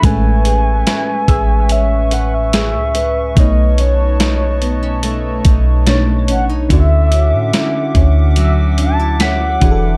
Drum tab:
HH |xxxxxxxx|xxxxxxxx|xxxxxxxx|
SD |--o---o-|--o---o-|--o---o-|
BD |o--o----|o----o--|o--o---o|